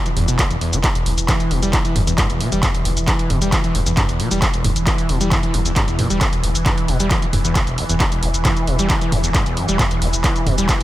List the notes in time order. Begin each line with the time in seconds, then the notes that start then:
Already playing: E3
0.06 E3, closed hi-hat, shaker
0.17 E1 E2, mid tom, open hi-hat
0.28 E1 B2, closed hi-hat, shaker
0.39 E2, kick, clap, closed hi-hat, shaker
0.51 E1 E2, closed hi-hat, shaker
0.61 E2, open hi-hat
0.73 E1 E3, closed hi-hat, shaker
0.84 E2 E3, kick, clap, closed hi-hat, shaker
0.95 E1, closed hi-hat, shaker
1.06 E1 E2, open hi-hat
1.18 E1, closed hi-hat, shaker
1.29 E3, kick, clap, closed hi-hat, mid tom, shaker
1.40 closed hi-hat, shaker
1.51 E1 B2, open hi-hat
1.63 E1 G3, closed hi-hat, shaker
1.73 E3, kick, clap, closed hi-hat, shaker
1.85 E3, closed hi-hat, shaker
1.96 E1 E2, mid tom, open hi-hat
2.07 E1 E2, closed hi-hat, shaker
2.18 G2, kick, clap, closed hi-hat, shaker
2.30 E1 E2, closed hi-hat, shaker
2.41 B2, open hi-hat
2.52 E1 G3, closed hi-hat, shaker
2.63 E2, kick, clap, closed hi-hat, mid tom, shaker
2.74 E1, closed hi-hat, shaker
2.85 E1 E2, open hi-hat
2.97 E1, closed hi-hat, shaker
3.08 E3, kick, clap, closed hi-hat, shaker
3.19 closed hi-hat, shaker
3.30 E1 B2, mid tom, open hi-hat
3.42 E1 G3, closed hi-hat, shaker
3.52 E3, kick, clap, closed hi-hat, shaker
3.64 E3, closed hi-hat, shaker
3.75 E1 E2, open hi-hat
3.86 E1 E2, closed hi-hat, shaker
3.97 G2, kick, clap, closed hi-hat, mid tom, shaker
4.09 E1 E2, closed hi-hat, shaker
4.20 B2, open hi-hat
4.31 E1 G3, closed hi-hat, shaker
4.42 E2, kick, clap, closed hi-hat, shaker
4.54 E1, closed hi-hat, shaker
4.64 E1 E2, mid tom, open hi-hat
4.76 E1, closed hi-hat, shaker
4.87 E3, kick, clap, closed hi-hat, shaker
4.98 closed hi-hat, shaker
5.09 E1 B2, open hi-hat
5.21 E1 G3, closed hi-hat, shaker
5.32 E3, kick, clap, closed hi-hat, mid tom, shaker
5.43 E3, closed hi-hat, shaker
5.54 E1 E2, open hi-hat
5.66 E1 E2, closed hi-hat, shaker
5.76 G2, kick, clap, closed hi-hat, shaker
5.88 E1 E2, closed hi-hat, shaker
5.99 B2, mid tom, open hi-hat
6.10 E1 G3, closed hi-hat, shaker
6.21 E2, kick, clap, closed hi-hat, shaker
6.33 E1, closed hi-hat, shaker
6.43 E1 E2, open hi-hat
6.55 E1, closed hi-hat, shaker
6.66 E3, kick, clap, closed hi-hat, mid tom, shaker
6.78 closed hi-hat, shaker
6.88 E1 B2, open hi-hat
7.00 E1 G3, closed hi-hat, shaker
7.11 E3, kick, clap, closed hi-hat, shaker
7.22 E3, closed hi-hat, shaker
7.33 E1, mid tom, open hi-hat
7.45 E1 E2, closed hi-hat, shaker
7.56 kick, clap, closed hi-hat, shaker
7.67 E1, closed hi-hat, shaker
7.78 G2, open hi-hat
7.89 E1 E2, closed hi-hat, shaker
8.00 E2, kick, clap, closed hi-hat, shaker
8.12 E1, closed hi-hat, shaker
8.23 E1 E2, open hi-hat
8.34 E1, closed hi-hat, shaker
8.45 E3, kick, clap, closed hi-hat, mid tom, shaker
8.57 closed hi-hat, shaker
8.67 E1 B2, open hi-hat
8.79 E1 G3, closed hi-hat, shaker
8.90 E3, kick, clap, closed hi-hat, shaker
9.01 E3, closed hi-hat, shaker
9.12 E1 E2, mid tom, open hi-hat
9.24 E1 E2, closed hi-hat, shaker
9.35 G2, kick, clap, closed hi-hat, shaker
9.46 E1 E2, closed hi-hat, shaker
9.57 F#2, open hi-hat
9.69 E1 G3, closed hi-hat, shaker
9.79 E2, kick, clap, closed hi-hat, mid tom, shaker
9.91 E1, closed hi-hat, shaker
10.02 E1 E2, open hi-hat
10.13 E1, closed hi-hat, shaker
10.24 E3, kick, clap, closed hi-hat, shaker
10.36 closed hi-hat, shaker
10.47 E1 B2, mid tom, open hi-hat
10.58 E1 G3, closed hi-hat, shaker
10.69 E3, kick, clap, closed hi-hat, shaker